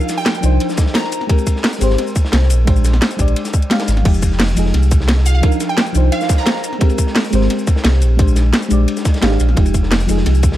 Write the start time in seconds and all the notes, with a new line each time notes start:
Already playing: F3 D4 D#4 A#4
0.00 shaker
0.09 snare, closed hi-hat, ride, shaker
0.18 G5
0.25 snare, closed hi-hat, ride
0.35 shaker
0.41 C2 F3 D4 D#4, closed hi-hat, ride, shaker
0.46 C5
0.60 closed hi-hat, ride
0.69 snare, shaker
0.77 kick, snare, closed hi-hat, ride, shaker
0.86 snare
0.94 A#5, snare, closed hi-hat, ride
1.04 snare
1.12 closed hi-hat, ride, shaker
1.21 snare
1.27 G#3 C4 G4, kick, closed hi-hat, ride
1.32 A#4
1.38 ride, shaker
1.47 kick, closed hi-hat, ride, shaker
1.56 snare
1.64 snare, closed hi-hat, open hi-hat
1.73 shaker
1.79 G#1 G#3 C4 G4, closed hi-hat, ride, shaker
1.83 C5
1.90 snare
1.98 snare, closed hi-hat, ride
2.07 shaker
2.16 kick, closed hi-hat, ride, shaker
2.25 snare
2.32 C2, snare, closed hi-hat, ride
2.42 snare
2.50 A#1, closed hi-hat, ride, shaker
2.65 G#3 D4 G4, kick, closed hi-hat, ride
2.70 C5
2.76 shaker
2.85 snare, closed hi-hat, ride, shaker
2.93 snare
3.01 snare, closed hi-hat, ride
3.11 shaker
3.17 A#1 G#3 D4 G4, kick, closed hi-hat, ride, shaker
3.22 D5
3.28 closed hi-hat
3.36 closed hi-hat, ride
3.45 snare, closed hi-hat, shaker
3.54 kick, closed hi-hat, shaker
3.62 closed hi-hat
3.70 G#3 D4 G4 F5, snare, closed hi-hat, ride
3.80 snare, closed hi-hat, ride
3.88 G#1, snare, closed hi-hat, shaker
3.97 snare, ride
4.03 F1 F3 G#3 D#4, kick, closed hi-hat, crash, ride
4.08 G4
4.14 ride, shaker
4.22 kick, closed hi-hat, ride, shaker
4.32 snare
4.40 snare, closed hi-hat, open hi-hat
4.48 shaker
4.55 F1 F3 G#3 D#4, closed hi-hat, ride, shaker
4.59 G#4
4.66 snare
4.74 C2, snare, closed hi-hat, ride
4.83 shaker
4.91 kick, closed hi-hat, ride, shaker
5.00 snare
5.08 snare, closed hi-hat, ride
5.18 snare
5.26 F5, closed hi-hat, ride, shaker
5.35 F5
5.41 F3 D4 D#4, kick, closed hi-hat, ride
5.46 A#4
5.52 shaker
5.60 snare, closed hi-hat, ride, shaker
5.69 G5
5.78 snare, closed hi-hat, ride
5.86 shaker
5.93 C2 F3 D4 D#4, closed hi-hat, ride, shaker
5.97 C5
6.12 F5, closed hi-hat, ride
6.21 snare, shaker
6.29 kick, snare, closed hi-hat, ride, shaker
6.38 A#5, snare
6.46 snare, closed hi-hat, ride
6.55 snare
6.64 closed hi-hat, ride, shaker
6.73 snare
6.79 G#3 C4 G4, kick, closed hi-hat, ride
6.83 A#4
6.89 ride, shaker
6.98 kick, closed hi-hat, ride, shaker
7.07 snare
7.16 snare, closed hi-hat, open hi-hat
7.24 shaker
7.31 G#1 G#3 C4 G4, closed hi-hat, ride, shaker
7.35 C5
7.41 snare
7.50 snare, closed hi-hat, ride
7.59 shaker
7.67 kick, closed hi-hat, ride, shaker
7.76 snare
7.84 C2, snare, closed hi-hat, ride
7.93 snare
8.02 A#1, closed hi-hat, ride, shaker
8.17 G#3 D4 G4, kick, closed hi-hat, ride
8.21 C5
8.28 shaker
8.36 snare, closed hi-hat, ride, shaker
8.53 snare, closed hi-hat, ride
8.62 shaker
8.69 A#1 G#3 D4 G4, closed hi-hat, ride, shaker
8.73 D5
8.88 closed hi-hat, ride
8.97 snare, closed hi-hat, shaker
9.05 kick, snare, closed hi-hat, ride, shaker
9.14 snare, closed hi-hat
9.21 G#1 G#3 D4 G4 F5, snare, closed hi-hat, ride
9.31 snare
9.40 A#1, closed hi-hat, ride, shaker
9.49 snare
9.55 F1 F3 G#3 D#4, kick, closed hi-hat, ride
9.59 G4
9.66 ride, shaker
9.74 kick, closed hi-hat, ride, shaker
9.83 snare
9.92 snare, closed hi-hat, open hi-hat
10.00 shaker
10.07 F1 F3 G#3 D#4, closed hi-hat, ride, shaker
10.11 G#4
10.17 snare
10.26 C2, snare, closed hi-hat, ride
10.35 shaker
10.43 kick, closed hi-hat, ride, shaker
10.52 snare